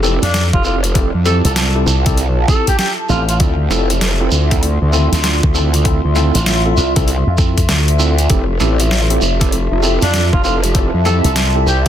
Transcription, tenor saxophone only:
0.23 D4
0.53 F4
0.65 F4
1.26 A4
1.45 A4
2.49 A4
2.68 G4
2.79 G4
3.10 F4
3.29 F4
10.02 D4
10.33 F4
10.44 F4
11.06 A4
11.25 A4
11.67 G4

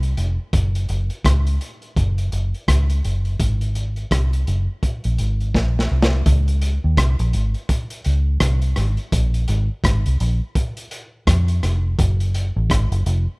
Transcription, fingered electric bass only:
Already playing: C2
0.18 F1
0.53 F#1
0.90 F#1
1.25 C#2
1.97 F#1
2.33 F#1
2.69 C#2
3.05 F#1
3.40 G#1
4.11 C2
4.48 F#1
5.05 A#1
5.19 G#1
5.55 A#1
5.91 C2
6.26 C#2
6.84 D#2
6.98 C2
7.20 A#1
7.34 G#1
8.06 C#2
8.41 C2
8.77 G#1
9.13 A#1
9.49 G#1
9.84 G#1
10.06 C2
10.21 A#1
11.27 F2
11.63 F1
11.99 F#1
12.56 A1
12.70 G#1
12.92 F#1
13.06 F1

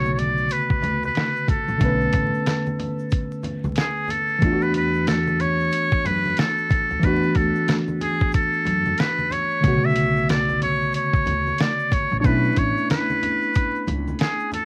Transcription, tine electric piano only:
Already playing: C#3 D3 A3 B3 F#4
1.78 D3 A3 B3
1.84 C#4 B4
4.39 E3 A3 B3
4.44 D4 F4
4.53 F#4
6.99 E3 A3 B3
7.05 D4 F#4
9.61 D3 A3 B3
9.66 C#3 F#4
12.21 A3 B3 D4
12.26 C#4 E4

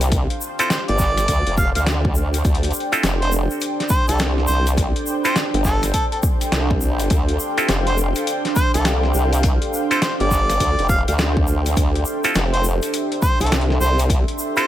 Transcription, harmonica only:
0.60 C5
0.70 C5
0.88 D5
1.58 F5
1.76 F5
3.21 C5
3.90 C5
4.08 A4
4.47 C5
5.24 C5
5.64 A4
5.93 A4
6.12 A4
7.87 C5
8.56 C5
8.74 A4
9.91 C5
10.02 C5
10.20 D5
10.89 F5
11.08 F5
12.53 C5
13.22 C5
13.41 A4
13.81 C5
14.57 C5

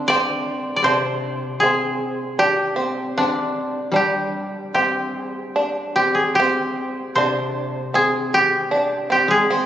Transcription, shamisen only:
0.10 C4
0.86 D4
1.63 C4
2.39 D4
2.76 C4
3.18 C4
3.94 D4
4.75 C4
5.56 D4
5.97 C4
6.40 C4
7.18 D4
7.94 C4
8.71 D4
9.10 C4
9.50 C4

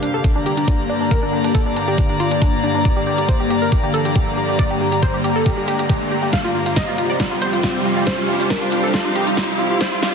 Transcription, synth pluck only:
0.03 D4
0.14 A4
0.24 D4
0.36 D4
0.46 G4
0.57 D4
0.68 D4
0.89 D4
1.01 D4
1.11 A#4
1.23 D4
1.33 D4
1.44 D4
1.55 A4
1.66 D4
1.76 D4
1.88 G4
1.98 D4
2.10 D4
2.20 F4
2.31 D4
2.42 D4
2.63 D4
2.75 D4
2.85 D5
2.97 G4
3.07 G4
3.18 G4
3.29 C5
3.40 G4
3.50 G4
3.62 A#4
3.72 G4
3.83 G4
3.94 A4
4.05 G4
4.16 G4
4.37 G4
4.49 G4
4.59 D5
4.70 G4
4.81 G4
4.92 G4
5.03 C5
5.14 G4
5.24 G4
5.36 A4
5.46 G4
5.57 G4
5.68 G4
5.79 G4
5.90 G4
6.11 G4
6.23 G4
6.33 F5
6.44 F4
6.55 F4
6.66 F4
6.77 D#5
6.88 F4
6.98 F4
7.10 D5
7.20 F4
7.31 F4
7.42 C5
7.53 F4
7.63 F4
7.85 F4
7.97 F4
8.07 C5
8.18 F4
8.29 F4
8.40 F4
8.50 A#4
8.62 F4
8.72 F4
8.83 A4
8.94 F4
9.05 F4
9.15 G4
9.27 F4
9.37 F4
9.59 F4
9.70 F4
9.81 C5
9.92 F4
10.02 F4

